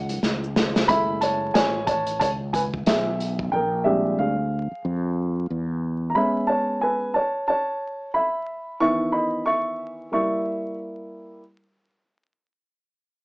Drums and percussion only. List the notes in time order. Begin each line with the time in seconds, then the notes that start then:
0.09 closed hi-hat, high conga, maracas
0.23 snare, maracas
0.44 maracas
0.56 snare, low conga, maracas
0.76 snare, maracas
0.89 kick, closed hi-hat
1.22 closed hi-hat
1.55 snare, closed hi-hat
1.87 kick, closed hi-hat
2.07 closed hi-hat
2.21 kick, closed hi-hat
2.54 kick, closed hi-hat
2.74 kick
2.86 snare, closed hi-hat
3.20 closed hi-hat
3.39 kick